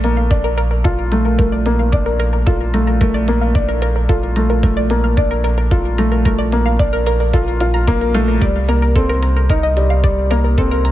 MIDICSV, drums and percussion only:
0, 0, Header, 1, 2, 480
1, 0, Start_track
1, 0, Key_signature, -2, "major"
1, 0, Tempo, 540541
1, 1713, Time_signature, 4, 2, 24, 8
1, 9694, End_track
2, 0, Start_track
2, 0, Title_t, "Drums"
2, 34, Note_on_c, 9, 42, 54
2, 123, Note_off_c, 9, 42, 0
2, 273, Note_on_c, 9, 36, 91
2, 362, Note_off_c, 9, 36, 0
2, 512, Note_on_c, 9, 42, 57
2, 601, Note_off_c, 9, 42, 0
2, 752, Note_on_c, 9, 36, 100
2, 841, Note_off_c, 9, 36, 0
2, 992, Note_on_c, 9, 42, 56
2, 1081, Note_off_c, 9, 42, 0
2, 1232, Note_on_c, 9, 36, 95
2, 1321, Note_off_c, 9, 36, 0
2, 1472, Note_on_c, 9, 42, 54
2, 1561, Note_off_c, 9, 42, 0
2, 1712, Note_on_c, 9, 36, 92
2, 1800, Note_off_c, 9, 36, 0
2, 1952, Note_on_c, 9, 42, 54
2, 2041, Note_off_c, 9, 42, 0
2, 2192, Note_on_c, 9, 36, 97
2, 2280, Note_off_c, 9, 36, 0
2, 2433, Note_on_c, 9, 42, 57
2, 2522, Note_off_c, 9, 42, 0
2, 2672, Note_on_c, 9, 36, 101
2, 2761, Note_off_c, 9, 36, 0
2, 2912, Note_on_c, 9, 42, 58
2, 3001, Note_off_c, 9, 42, 0
2, 3153, Note_on_c, 9, 36, 96
2, 3241, Note_off_c, 9, 36, 0
2, 3393, Note_on_c, 9, 42, 60
2, 3481, Note_off_c, 9, 42, 0
2, 3633, Note_on_c, 9, 36, 99
2, 3722, Note_off_c, 9, 36, 0
2, 3872, Note_on_c, 9, 42, 58
2, 3961, Note_off_c, 9, 42, 0
2, 4113, Note_on_c, 9, 36, 102
2, 4202, Note_off_c, 9, 36, 0
2, 4352, Note_on_c, 9, 42, 60
2, 4441, Note_off_c, 9, 42, 0
2, 4593, Note_on_c, 9, 36, 105
2, 4682, Note_off_c, 9, 36, 0
2, 4834, Note_on_c, 9, 42, 57
2, 4923, Note_off_c, 9, 42, 0
2, 5074, Note_on_c, 9, 36, 91
2, 5162, Note_off_c, 9, 36, 0
2, 5314, Note_on_c, 9, 42, 65
2, 5403, Note_off_c, 9, 42, 0
2, 5553, Note_on_c, 9, 36, 89
2, 5642, Note_off_c, 9, 36, 0
2, 5793, Note_on_c, 9, 42, 56
2, 5882, Note_off_c, 9, 42, 0
2, 6033, Note_on_c, 9, 36, 94
2, 6122, Note_off_c, 9, 36, 0
2, 6273, Note_on_c, 9, 42, 60
2, 6362, Note_off_c, 9, 42, 0
2, 6513, Note_on_c, 9, 36, 101
2, 6602, Note_off_c, 9, 36, 0
2, 6753, Note_on_c, 9, 42, 57
2, 6842, Note_off_c, 9, 42, 0
2, 6993, Note_on_c, 9, 36, 93
2, 7082, Note_off_c, 9, 36, 0
2, 7233, Note_on_c, 9, 42, 58
2, 7322, Note_off_c, 9, 42, 0
2, 7473, Note_on_c, 9, 36, 89
2, 7562, Note_off_c, 9, 36, 0
2, 7714, Note_on_c, 9, 42, 54
2, 7802, Note_off_c, 9, 42, 0
2, 7953, Note_on_c, 9, 36, 90
2, 8042, Note_off_c, 9, 36, 0
2, 8193, Note_on_c, 9, 42, 61
2, 8281, Note_off_c, 9, 42, 0
2, 8432, Note_on_c, 9, 36, 100
2, 8521, Note_off_c, 9, 36, 0
2, 8674, Note_on_c, 9, 42, 56
2, 8763, Note_off_c, 9, 42, 0
2, 8912, Note_on_c, 9, 36, 94
2, 9001, Note_off_c, 9, 36, 0
2, 9155, Note_on_c, 9, 42, 62
2, 9244, Note_off_c, 9, 42, 0
2, 9393, Note_on_c, 9, 36, 89
2, 9482, Note_off_c, 9, 36, 0
2, 9634, Note_on_c, 9, 42, 52
2, 9694, Note_off_c, 9, 42, 0
2, 9694, End_track
0, 0, End_of_file